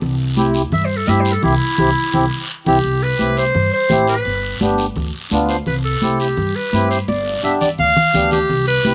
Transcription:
0.01 upright bass C2, high conga, low conga, long guiro
0.37 accordion C4 E4 G4, high conga, short guiro
0.54 short guiro
0.72 upright bass G2, clarinet E5, high conga, low conga, long guiro
0.85 clarinet C5
0.97 clarinet A4
1.07 upright bass G2, accordion C4 E4 G4, clarinet E5, high conga, short guiro
1.20 clarinet C5
1.25 short guiro
1.32 clarinet A4
1.43 upright bass C2, accordion C4 E4 G4, clarinet E4, low conga, long guiro
1.78 upright bass C2, accordion C4 E4 G4, low conga, long guiro
2.13 upright bass C2, accordion C4 E4 G4, low conga, long guiro
2.66 upright bass C2, accordion C4 E4 G4, clarinet G4, low conga, long guiro
2.84 upright bass C2, high conga, long guiro
3.03 clarinet B4
3.19 upright bass C2, accordion C4 E4 G4, high conga, short guiro
3.37 clarinet C5, short guiro
3.54 upright bass G2, high conga, low conga, long guiro
3.73 clarinet C5
3.90 upright bass A1, accordion C4 E4 G4, high conga, low conga, short guiro
4.08 clarinet B4, short guiro
4.25 upright bass G1, high conga, long guiro
4.61 upright bass G1, accordion B3 D4 G4, high conga, short guiro
4.78 short guiro
4.96 upright bass D2, high conga, low conga, long guiro
5.31 upright bass D2, accordion B3 D4 F4, high conga, short guiro
5.49 clarinet C5, short guiro
5.66 upright bass C2, clarinet B4, high conga, low conga, long guiro
5.85 clarinet A4
6.02 upright bass C2, accordion C4 E4 G4, high conga, short guiro
6.20 clarinet G4, short guiro
6.37 upright bass G2, high conga, low conga, long guiro
6.56 clarinet B4
6.73 upright bass G2, accordion C4 E4 G4, high conga, short guiro
6.91 clarinet C5, short guiro
7.08 upright bass G1, clarinet D5, high conga, long guiro
7.43 upright bass G1, accordion B3 D4 G4, clarinet E5, short guiro
7.61 clarinet D5, low conga, short guiro
7.78 upright bass D2, clarinet F5, low conga, long guiro
7.97 low conga
8.14 upright bass D2, accordion B3 D4 G4, low conga, short guiro
8.31 clarinet G4, low conga, short guiro
8.49 upright bass C2, high conga, low conga, long guiro
8.67 clarinet B4
8.85 upright bass C2, accordion C4 E4 G4, high conga, short guiro

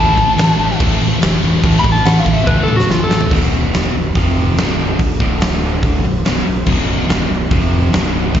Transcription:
Already playing: fingered electric bass A1, overdriven electric guitar A2
0.00 overdriven electric guitar E3 A3, lead electric guitar A5
0.17 overdriven electric guitar A2 E3, distorted electric guitar A3, kick, crash
0.37 fingered electric bass A1, overdriven electric guitar A2 E3, distorted electric guitar A3, snare, crash
0.58 fingered electric bass A1, overdriven electric guitar A2 E3, distorted electric guitar A3, crash
0.71 snare
0.80 fingered electric bass A1, overdriven electric guitar A2 E3 A3, kick, crash
1.00 fingered electric bass A1, overdriven electric guitar A2 E3, distorted electric guitar A3, crash
1.22 fingered electric bass E1, overdriven electric guitar A2 E3, distorted electric guitar A3, snare, crash
1.43 fingered electric bass E1, overdriven electric guitar A2 E3, distorted electric guitar A3, crash
1.64 fingered electric bass A1, overdriven electric guitar A2 E3 A3, kick, crash
1.79 lead electric guitar B5
1.84 fingered electric bass A1, overdriven electric guitar A2 E3, distorted electric guitar A3, kick, crash
1.92 lead electric guitar A5
1.96 snare
2.05 fingered electric bass A1, overdriven electric guitar A2 E3, distorted electric guitar A3, lead electric guitar F#5, snare, crash
2.19 lead electric guitar F5
2.26 fingered electric bass A1, overdriven electric guitar A2 E3, distorted electric guitar A3, kick, crash
2.33 lead electric guitar E5
2.38 snare
2.47 fingered electric bass E2, overdriven electric guitar A2 E3 A3, lead electric guitar B4, kick, high tom
2.58 high tom
2.63 lead electric guitar A4
2.68 fingered electric bass A1, overdriven electric guitar A2 E3, distorted electric guitar A3, mid tom
2.77 lead electric guitar F#4, snare
2.89 fingered electric bass A1, overdriven electric guitar A2 E3, distorted electric guitar A3, lead electric guitar F4, snare
2.99 mid tom
3.04 lead electric guitar A4
3.10 fingered electric bass A1, overdriven electric guitar A2 E3, distorted electric guitar A3, snare
3.21 floor tom
3.31 fingered electric bass B0, overdriven electric guitar B1 F#2 B2, kick, crash
3.72 fingered electric bass E1, overdriven electric guitar E2 B2 E3, snare, open hi-hat
3.95 fingered electric bass B0, overdriven electric guitar B1 F#2
4.15 fingered electric bass F1, overdriven electric guitar F2 C3 F3, kick, open hi-hat
4.57 fingered electric bass B0, overdriven electric guitar B1 F#2 B2, snare, open hi-hat
4.99 muted fingered electric bass stroke, muted overdriven electric guitar stroke, kick, open hi-hat
5.20 fingered electric bass D1, overdriven electric guitar D2 A2 D3, kick
5.41 snare, open hi-hat
5.83 kick, open hi-hat
6.04 fingered electric bass B0, overdriven electric guitar B1 F#2
6.25 fingered electric bass B0, overdriven electric guitar B1 F#2 B2, snare, open hi-hat
6.46 fingered electric bass B0, overdriven electric guitar B1 F#2
6.66 fingered electric bass B0, overdriven electric guitar B1 F#2 B2, kick, crash
7.09 fingered electric bass E1, overdriven electric guitar E2 B2 E3, snare, open hi-hat
7.29 fingered electric bass B0, overdriven electric guitar B1 F#2
7.51 fingered electric bass F1, overdriven electric guitar F2 C3 F3, kick, open hi-hat
7.92 fingered electric bass B0, overdriven electric guitar B1 F#2 B2, snare, open hi-hat
8.35 fingered electric bass A1, overdriven electric guitar A2 E3 A3, kick, open hi-hat

